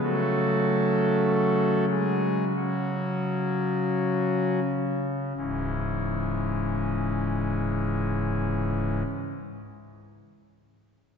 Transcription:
\new Staff \with { instrumentName = "Pipe organ" } { \clef bass \time 4/4 \key cis \minor \tempo 4 = 41 << { <a fis' a'>4. <gis gis'>8 <fis cis' fis'>4. r8 | <cis,, cis, gis, e gis cis'>1 | } \\ { <cis fis>1 | r1 | } >> }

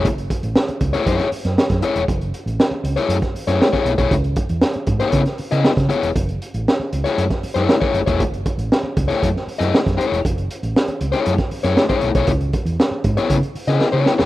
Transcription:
<<
  \new Staff \with { instrumentName = "Overdriven electric guitar" } { \time 4/4 \key fis \dorian \tempo 4 = 118 r4. r16 <a e' gis' cis''>16 <a e' gis' cis''>8 r4 <a e' gis' cis''>16 r16 | r4. r16 <a e' gis' cis''>16 r8. <a e' gis' cis''>16 r16 <a e' gis' cis''>16 r16 <a e' gis' cis''>16 | r4. r16 <b e' gis' cis''>8 r8 <b e' gis' dis''>16 r8 <b e' gis' cis''>16 r16 | r4. r16 <a e' gis' cis''>16 r8. <a e' gis' cis''>8 <a e' gis' cis''>16 r16 <a e' gis' cis''>16 |
r4. r16 <a e' gis' cis''>16 r8. <a e' gis' dis''>16 r8 <a e' gis' cis''>8 | r4. r16 <a e' gis' cis''>8 r8 <a e' gis' cis''>16 r16 <a e' gis' cis''>8 <a e' gis' cis''>16 | r4. r16 <b e' gis' cis''>16 r8. <b e' gis' dis''>16 r16 <b e' gis' cis''>8 <b e' gis' cis''>16 | }
  \new Staff \with { instrumentName = "Fingered electric bass" } { \clef bass \time 4/4 \key fis \dorian fis,,8 r16 a,,16 r8 cis,16 r16 fis,16 r8 fis,16 r16 fis,16 r16 e,,16 | fis,,8 r16 a,,16 r8 cis,16 r16 fis,16 r8 fis,16 r8 b,,16 b,,16 | cis,8 r16 e,16 r8 gis,16 r16 cis16 r8 cis16 r16 cis16 r16 e,,16 | fis,,8 r16 a,,16 r8 cis,16 r16 fis,16 r8 fis,16 r8 fis,,16 e,,16 |
fis,,8 r16 a,,16 r8 cis,16 r16 fis,16 r8 fis,16 r16 fis,16 r16 e,,16 | fis,,8 r16 a,,16 r8 cis,16 r16 fis,16 r8 fis,16 r8 b,,16 b,,16 | cis,8 r16 e,16 r8 gis,16 r16 cis16 r8 cis16 r16 cis16 r16 e,,16 | }
  \new DrumStaff \with { instrumentName = "Drums" } \drummode { \time 4/4 <hh bd>16 hh16 <hh bd>16 hh16 sn16 hh16 <hh bd>16 <hh sn>16 <hh bd>16 <hh sn>16 hho16 <hh sn>16 sn16 <hh bd sn>16 hh16 hh16 | <hh bd>16 hh16 hh16 hh16 sn8 hh16 <hh sn>16 hh16 <hh bd sn>16 hho16 <hh sn>16 sn16 <hh bd sn>16 hh16 <hh bd>16 | <hh bd>16 hh16 <hh bd>16 hh16 sn16 hh16 <hh bd>16 <hh sn>16 <hh bd>16 <hh sn>16 hho16 <hh sn>16 sn16 <hh bd sn>16 hh16 hh16 | <hh bd>16 hh16 hh16 hh16 sn8 hh16 <hh sn>16 hh16 <hh bd sn>16 hho16 <hh sn>16 sn16 <bd sn>16 hh16 <hh bd>16 |
<hh bd>16 hh16 <hh bd>16 hh16 sn8 <hh bd>16 <hh sn>16 <hh bd>16 sn16 hho16 <hh sn>16 sn16 <hh bd sn>16 hh16 hh16 | <hh bd>16 hh16 hh16 hh16 sn16 hh16 hh16 <hh sn>16 hh16 <hh bd sn>16 hho16 <hh sn>16 sn16 <hh bd sn>16 hh16 <hh bd>16 | <hh bd>16 hh16 <hh bd>16 hh16 sn8 <hh bd>16 <hh sn>16 <hh bd>16 hh16 hho16 <hh sn>16 sn8 sn16 sn16 | }
>>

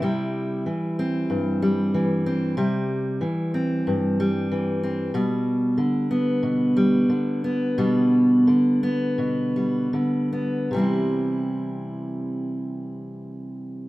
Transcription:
\new Staff \with { instrumentName = "Steel-string acoustic guitar" } { \clef bass \time 4/4 \key c \major \tempo 4 = 92 << { <g e'>4. c'4 g4 c'8 | g4. c'4 g4 c'8 | g4. b4 g4 b8 | g4. b4 g4 b8 |
<e g c' e'>1 | } \\ { c4 e4 g,4 e4 | c4 e4 g,4 e4 | b,4 d4 b,4 d4 | b,4 d4 b,4 d4 |
c1 | } >> }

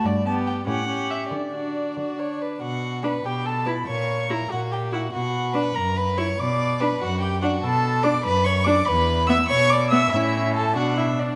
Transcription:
<<
  \new Staff \with { instrumentName = "Violin" } { \time 6/8 \key d \major \tempo 4. = 96 d''8 a''8 g''8 fis''4 e''8 | d''2~ d''8 r8 | \key b \minor fis''4 b''8 g''8 a''8 b''8 | cis'''4 ais''8 fis''8 g''8 fis''8 |
fis''4 b''8 ais''8 b''8 cis'''8 | d'''4 b''8 fis''8 g''8 fis''8 | a''4 d'''8 b''8 cis'''8 d'''8 | b''4 e'''8 cis'''8 d'''8 e'''8 |
e''4 a''8 fis''8 e''8 d''8 | }
  \new Staff \with { instrumentName = "Violin" } { \time 6/8 \key d \major r8 g'4 g'8 g'4 | r8 fis'4 fis'8 cis''8 b'8 | \key b \minor fis'4 b'8 g'8 a'8 b'8 | cis''4 ais'8 fis'8 g'8 fis'8 |
fis'4 b'8 ais'8 b'8 cis''8 | d''4 b'8 fis'8 g'8 fis'8 | a'4 d''8 b'8 cis''8 d''8 | b'4 e''8 cis''8 d''8 e''8 |
e'4 a'8 fis'8 e'8 d'8 | }
  \new Staff \with { instrumentName = "Viola" } { \time 6/8 \key d \major r8 b4 cis'8 cis'4 | r8 d'4. d'4 | \key b \minor r4 d'16 r4 r16 e'16 r16 | r4 e'16 r4 r16 e'16 r16 |
r4 d'16 r4 r16 e'16 r16 | r4 d'16 r4 r16 d'16 r16 | r4 d'16 r4 r16 d'16 r16 | r4 b16 r4 r16 b16 r16 |
cis'4. d'4. | }
  \new Staff \with { instrumentName = "Cello" } { \clef bass \time 6/8 \key d \major g,4. a,4. | d4. d4. | \key b \minor b,4. b,4. | ais,4. ais,4. |
b,4. fis,4. | b,4. fis,4. | b,4. fis,4. | e,4. b,4. |
a,4. b,4. | }
>>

